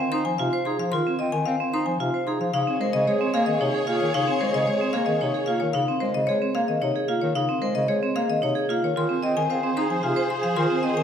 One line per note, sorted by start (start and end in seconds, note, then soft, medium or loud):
0.00 0.16 C4 medium
0.12 0.22 D#4 medium
0.12 0.30 C5 medium
0.12 0.29 C6 loud
0.25 0.36 F3 medium
0.25 0.43 G#5 medium
0.38 0.49 C3 medium
0.38 0.57 F4 medium
0.38 0.56 F5 medium
0.53 0.70 C5 loud
0.65 0.76 D#4 medium
0.65 0.83 G#4 medium
0.65 0.83 C6 medium
0.79 0.89 F3 medium
0.79 0.97 F5 medium
0.92 1.03 D#3 medium
0.92 1.10 F4 loud
0.92 1.10 C6 medium
1.07 1.24 C4 medium
1.19 1.30 C4 medium
1.19 1.37 D#5 medium
1.32 1.43 D#3 medium
1.32 1.50 G#5 medium
1.46 1.56 C4 medium
1.46 1.64 C5 medium
1.46 1.63 F5 medium
1.60 1.77 C4 medium
1.73 1.83 D#4 medium
1.73 1.91 C5 medium
1.73 1.90 C6 medium
1.86 1.97 F3 medium
1.86 2.03 G#5 medium
2.00 2.10 C3 medium
2.00 2.17 F4 medium
2.00 2.17 F5 medium
2.14 2.31 C5 medium
2.27 2.37 D#4 medium
2.27 2.44 G#4 medium
2.27 2.44 C6 medium
2.40 2.50 F3 medium
2.40 2.52 F5 medium
2.53 2.63 C#3 medium
2.53 2.71 D#4 medium
2.53 2.73 G#4 soft
2.53 5.58 G#4 medium
2.53 5.57 C#5 medium
2.53 2.71 F5 medium
2.67 2.84 C4 medium
2.80 2.90 G#3 medium
2.80 3.01 G#4 medium
2.80 2.98 A#4 medium
2.80 2.98 C5 medium
2.93 3.04 C#3 medium
2.93 3.11 D#5 medium
3.07 3.17 G#3 medium
3.07 3.24 G#4 medium
3.07 3.29 G#4 medium
3.07 3.24 C#5 medium
3.21 3.38 C4 medium
3.34 3.44 A#3 medium
3.34 3.51 G#4 medium
3.34 3.57 G#4 medium
3.34 3.51 F5 medium
3.46 3.57 D#3 medium
3.46 3.64 D#5 medium
3.61 3.71 C3 medium
3.61 3.78 D#4 medium
3.61 3.78 C#5 medium
3.65 3.85 G#4 medium
3.74 3.91 G#4 medium
3.87 3.98 A#3 medium
3.87 4.05 F4 medium
3.87 4.04 F5 medium
3.94 4.14 G#4 medium
4.01 4.11 D#3 medium
4.01 4.18 C#5 medium
4.14 4.25 C#3 medium
4.14 4.31 D#4 medium
4.14 4.31 F5 medium
4.21 4.41 G#4 medium
4.27 4.45 C4 medium
4.41 4.51 G#3 medium
4.41 4.58 A#4 medium
4.41 4.58 C5 medium
4.50 4.69 G#4 medium
4.54 4.65 C#3 medium
4.54 4.72 D#5 medium
4.67 4.78 G#3 medium
4.67 4.85 G#4 medium
4.67 4.85 C#5 medium
4.77 4.98 C4 medium
4.77 4.97 G#4 medium
4.93 5.04 A#3 medium
4.93 5.12 G#4 medium
4.93 5.11 F5 medium
5.06 5.18 D#3 medium
5.06 5.26 G#4 medium
5.06 5.24 D#5 medium
5.21 5.32 C3 medium
5.21 5.39 D#4 medium
5.21 5.38 C#5 medium
5.34 5.53 G#4 soft
5.34 5.52 G#4 medium
5.46 5.58 A#3 medium
5.46 5.65 F4 medium
5.46 5.65 F5 medium
5.60 5.72 D#3 medium
5.60 5.78 C#5 medium
5.73 5.85 C#3 medium
5.73 5.92 D#4 medium
5.73 5.92 F5 medium
5.88 6.05 C4 medium
6.00 6.12 G#3 medium
6.00 6.19 A#4 medium
6.00 6.18 C5 medium
6.14 6.25 C#3 medium
6.14 6.32 D#5 medium
6.27 6.39 G#3 medium
6.27 6.46 G#4 medium
6.27 6.45 C#5 medium
6.42 6.59 C4 medium
6.55 6.65 A#3 medium
6.55 6.73 G#4 medium
6.55 6.72 F5 medium
6.68 6.79 D#3 medium
6.68 6.86 D#5 medium
6.82 6.92 C3 medium
6.82 6.99 D#4 medium
6.82 6.99 C#5 medium
6.96 7.13 G#4 medium
7.08 7.19 A#3 medium
7.08 7.26 F4 medium
7.08 7.26 F5 medium
7.21 7.32 D#3 medium
7.21 7.39 C#5 medium
7.35 7.45 C#3 medium
7.35 7.53 D#4 medium
7.35 7.53 F5 medium
7.49 7.66 C4 medium
7.62 7.72 G#3 medium
7.62 7.79 A#4 medium
7.62 7.79 C5 medium
7.75 7.86 C#3 medium
7.75 7.93 D#5 medium
7.88 7.99 G#3 medium
7.88 8.06 G#4 medium
7.88 8.06 C#5 medium
8.03 8.20 C4 medium
8.16 8.26 A#3 medium
8.16 8.33 G#4 medium
8.16 8.33 F5 medium
8.30 8.40 D#3 medium
8.30 8.47 D#5 medium
8.42 8.53 C3 medium
8.42 8.60 D#4 medium
8.42 8.60 C#5 medium
8.55 8.73 G#4 medium
8.69 8.80 A#3 medium
8.69 8.87 F4 medium
8.69 8.87 F5 medium
8.83 8.93 D#3 medium
8.83 9.01 C#5 medium
8.96 9.06 D#3 medium
8.96 9.13 F4 medium
8.96 11.03 G#4 medium
8.96 9.16 G#4 soft
8.96 11.03 C5 medium
8.96 9.14 C6 medium
9.09 9.27 C4 medium
9.23 9.33 C4 medium
9.23 9.43 G#4 medium
9.23 9.40 D#5 medium
9.36 9.46 D#3 medium
9.36 9.54 G#5 medium
9.50 9.60 C4 medium
9.50 9.72 G#4 medium
9.50 9.67 C5 medium
9.50 9.67 F5 medium
9.63 9.81 C4 medium
9.77 9.87 D#4 medium
9.77 9.99 G#4 medium
9.77 9.94 C5 medium
9.77 9.94 C6 loud
9.90 10.00 F3 medium
9.90 10.07 G#5 medium
10.03 10.14 C3 medium
10.03 10.21 F4 medium
10.03 10.21 F5 medium
10.08 10.27 G#4 medium
10.16 10.34 C5 medium
10.30 10.47 C6 medium
10.36 10.56 G#4 medium
10.43 10.54 F3 medium
10.43 10.61 F5 medium
10.56 10.67 D#3 loud
10.56 10.74 F4 medium
10.56 10.74 C6 medium
10.64 10.83 G#4 medium
10.70 10.88 C4 medium
10.83 10.94 C4 medium
10.83 11.01 D#5 medium
10.92 11.03 G#4 medium
10.97 11.03 D#3 medium
10.97 11.03 G#5 medium